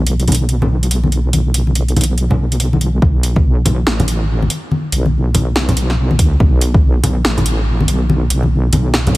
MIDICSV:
0, 0, Header, 1, 3, 480
1, 0, Start_track
1, 0, Key_signature, 2, "minor"
1, 0, Tempo, 422535
1, 1513, Time_signature, 4, 2, 24, 8
1, 10418, End_track
2, 0, Start_track
2, 0, Title_t, "Wobble bass"
2, 0, Program_c, 0, 39
2, 0, Note_on_c, 0, 35, 88
2, 3416, Note_off_c, 0, 35, 0
2, 3433, Note_on_c, 0, 35, 94
2, 3898, Note_off_c, 0, 35, 0
2, 3913, Note_on_c, 0, 35, 95
2, 4378, Note_off_c, 0, 35, 0
2, 4393, Note_on_c, 0, 33, 99
2, 5098, Note_off_c, 0, 33, 0
2, 5594, Note_on_c, 0, 35, 94
2, 7019, Note_off_c, 0, 35, 0
2, 7033, Note_on_c, 0, 38, 100
2, 7258, Note_off_c, 0, 38, 0
2, 7273, Note_on_c, 0, 35, 96
2, 7738, Note_off_c, 0, 35, 0
2, 7753, Note_on_c, 0, 35, 95
2, 8219, Note_off_c, 0, 35, 0
2, 8234, Note_on_c, 0, 33, 97
2, 8939, Note_off_c, 0, 33, 0
2, 8954, Note_on_c, 0, 35, 100
2, 9899, Note_off_c, 0, 35, 0
2, 9914, Note_on_c, 0, 35, 94
2, 10418, Note_off_c, 0, 35, 0
2, 10418, End_track
3, 0, Start_track
3, 0, Title_t, "Drums"
3, 74, Note_on_c, 9, 42, 76
3, 188, Note_off_c, 9, 42, 0
3, 222, Note_on_c, 9, 42, 34
3, 313, Note_off_c, 9, 42, 0
3, 313, Note_on_c, 9, 42, 47
3, 318, Note_on_c, 9, 63, 83
3, 319, Note_on_c, 9, 64, 78
3, 363, Note_off_c, 9, 42, 0
3, 363, Note_on_c, 9, 42, 63
3, 393, Note_off_c, 9, 42, 0
3, 393, Note_on_c, 9, 42, 76
3, 431, Note_off_c, 9, 63, 0
3, 433, Note_off_c, 9, 64, 0
3, 506, Note_off_c, 9, 42, 0
3, 554, Note_on_c, 9, 42, 49
3, 668, Note_off_c, 9, 42, 0
3, 703, Note_on_c, 9, 64, 81
3, 710, Note_on_c, 9, 63, 65
3, 817, Note_off_c, 9, 64, 0
3, 824, Note_off_c, 9, 63, 0
3, 942, Note_on_c, 9, 42, 49
3, 1034, Note_off_c, 9, 42, 0
3, 1034, Note_on_c, 9, 42, 74
3, 1147, Note_off_c, 9, 42, 0
3, 1177, Note_on_c, 9, 63, 84
3, 1274, Note_on_c, 9, 42, 48
3, 1290, Note_off_c, 9, 63, 0
3, 1387, Note_off_c, 9, 42, 0
3, 1513, Note_on_c, 9, 42, 79
3, 1517, Note_on_c, 9, 63, 78
3, 1626, Note_off_c, 9, 42, 0
3, 1630, Note_off_c, 9, 63, 0
3, 1753, Note_on_c, 9, 42, 78
3, 1866, Note_off_c, 9, 42, 0
3, 1898, Note_on_c, 9, 63, 62
3, 1993, Note_on_c, 9, 42, 78
3, 2012, Note_off_c, 9, 63, 0
3, 2106, Note_off_c, 9, 42, 0
3, 2141, Note_on_c, 9, 42, 33
3, 2231, Note_on_c, 9, 64, 72
3, 2232, Note_off_c, 9, 42, 0
3, 2232, Note_on_c, 9, 42, 50
3, 2232, Note_on_c, 9, 63, 84
3, 2282, Note_off_c, 9, 42, 0
3, 2282, Note_on_c, 9, 42, 66
3, 2313, Note_off_c, 9, 42, 0
3, 2313, Note_on_c, 9, 42, 83
3, 2345, Note_off_c, 9, 64, 0
3, 2346, Note_off_c, 9, 63, 0
3, 2426, Note_off_c, 9, 42, 0
3, 2473, Note_on_c, 9, 42, 49
3, 2586, Note_off_c, 9, 42, 0
3, 2616, Note_on_c, 9, 63, 62
3, 2620, Note_on_c, 9, 64, 93
3, 2729, Note_off_c, 9, 63, 0
3, 2734, Note_off_c, 9, 64, 0
3, 2861, Note_on_c, 9, 42, 53
3, 2953, Note_off_c, 9, 42, 0
3, 2953, Note_on_c, 9, 42, 76
3, 3067, Note_off_c, 9, 42, 0
3, 3103, Note_on_c, 9, 63, 89
3, 3193, Note_on_c, 9, 42, 51
3, 3216, Note_off_c, 9, 63, 0
3, 3306, Note_off_c, 9, 42, 0
3, 3432, Note_on_c, 9, 36, 117
3, 3433, Note_on_c, 9, 63, 90
3, 3546, Note_off_c, 9, 36, 0
3, 3547, Note_off_c, 9, 63, 0
3, 3673, Note_on_c, 9, 42, 78
3, 3787, Note_off_c, 9, 42, 0
3, 3817, Note_on_c, 9, 63, 72
3, 3820, Note_on_c, 9, 36, 99
3, 3930, Note_off_c, 9, 63, 0
3, 3934, Note_off_c, 9, 36, 0
3, 4150, Note_on_c, 9, 63, 100
3, 4154, Note_on_c, 9, 42, 79
3, 4154, Note_on_c, 9, 64, 79
3, 4264, Note_off_c, 9, 63, 0
3, 4267, Note_off_c, 9, 42, 0
3, 4268, Note_off_c, 9, 64, 0
3, 4392, Note_on_c, 9, 38, 113
3, 4506, Note_off_c, 9, 38, 0
3, 4541, Note_on_c, 9, 42, 38
3, 4541, Note_on_c, 9, 64, 91
3, 4542, Note_on_c, 9, 63, 70
3, 4634, Note_off_c, 9, 42, 0
3, 4634, Note_on_c, 9, 42, 81
3, 4654, Note_off_c, 9, 64, 0
3, 4655, Note_off_c, 9, 63, 0
3, 4747, Note_off_c, 9, 42, 0
3, 5026, Note_on_c, 9, 63, 85
3, 5113, Note_on_c, 9, 42, 80
3, 5140, Note_off_c, 9, 63, 0
3, 5227, Note_off_c, 9, 42, 0
3, 5354, Note_on_c, 9, 63, 84
3, 5468, Note_off_c, 9, 63, 0
3, 5593, Note_on_c, 9, 42, 81
3, 5707, Note_off_c, 9, 42, 0
3, 5743, Note_on_c, 9, 63, 71
3, 5857, Note_off_c, 9, 63, 0
3, 6069, Note_on_c, 9, 63, 94
3, 6072, Note_on_c, 9, 64, 83
3, 6073, Note_on_c, 9, 42, 81
3, 6183, Note_off_c, 9, 63, 0
3, 6186, Note_off_c, 9, 64, 0
3, 6187, Note_off_c, 9, 42, 0
3, 6313, Note_on_c, 9, 38, 122
3, 6427, Note_off_c, 9, 38, 0
3, 6458, Note_on_c, 9, 63, 66
3, 6459, Note_on_c, 9, 64, 99
3, 6461, Note_on_c, 9, 42, 38
3, 6552, Note_off_c, 9, 42, 0
3, 6552, Note_on_c, 9, 42, 82
3, 6572, Note_off_c, 9, 63, 0
3, 6573, Note_off_c, 9, 64, 0
3, 6666, Note_off_c, 9, 42, 0
3, 6701, Note_on_c, 9, 38, 38
3, 6815, Note_off_c, 9, 38, 0
3, 6938, Note_on_c, 9, 63, 86
3, 7032, Note_on_c, 9, 36, 63
3, 7032, Note_on_c, 9, 42, 81
3, 7052, Note_off_c, 9, 63, 0
3, 7146, Note_off_c, 9, 36, 0
3, 7146, Note_off_c, 9, 42, 0
3, 7272, Note_on_c, 9, 63, 85
3, 7273, Note_on_c, 9, 36, 125
3, 7386, Note_off_c, 9, 36, 0
3, 7386, Note_off_c, 9, 63, 0
3, 7514, Note_on_c, 9, 42, 82
3, 7627, Note_off_c, 9, 42, 0
3, 7661, Note_on_c, 9, 36, 109
3, 7662, Note_on_c, 9, 63, 65
3, 7775, Note_off_c, 9, 36, 0
3, 7775, Note_off_c, 9, 63, 0
3, 7991, Note_on_c, 9, 64, 87
3, 7993, Note_on_c, 9, 42, 82
3, 7993, Note_on_c, 9, 63, 91
3, 8105, Note_off_c, 9, 64, 0
3, 8107, Note_off_c, 9, 42, 0
3, 8107, Note_off_c, 9, 63, 0
3, 8232, Note_on_c, 9, 38, 126
3, 8346, Note_off_c, 9, 38, 0
3, 8378, Note_on_c, 9, 64, 88
3, 8381, Note_on_c, 9, 42, 37
3, 8387, Note_on_c, 9, 63, 65
3, 8472, Note_off_c, 9, 42, 0
3, 8472, Note_on_c, 9, 42, 78
3, 8492, Note_off_c, 9, 64, 0
3, 8500, Note_off_c, 9, 63, 0
3, 8585, Note_off_c, 9, 42, 0
3, 8866, Note_on_c, 9, 63, 88
3, 8952, Note_on_c, 9, 42, 80
3, 8980, Note_off_c, 9, 63, 0
3, 9066, Note_off_c, 9, 42, 0
3, 9196, Note_on_c, 9, 63, 99
3, 9310, Note_off_c, 9, 63, 0
3, 9432, Note_on_c, 9, 42, 81
3, 9546, Note_off_c, 9, 42, 0
3, 9578, Note_on_c, 9, 63, 72
3, 9691, Note_off_c, 9, 63, 0
3, 9913, Note_on_c, 9, 42, 81
3, 9916, Note_on_c, 9, 63, 100
3, 9918, Note_on_c, 9, 64, 74
3, 10026, Note_off_c, 9, 42, 0
3, 10029, Note_off_c, 9, 63, 0
3, 10031, Note_off_c, 9, 64, 0
3, 10153, Note_on_c, 9, 38, 127
3, 10266, Note_off_c, 9, 38, 0
3, 10301, Note_on_c, 9, 42, 37
3, 10303, Note_on_c, 9, 63, 66
3, 10304, Note_on_c, 9, 64, 88
3, 10415, Note_off_c, 9, 42, 0
3, 10416, Note_off_c, 9, 63, 0
3, 10418, Note_off_c, 9, 64, 0
3, 10418, End_track
0, 0, End_of_file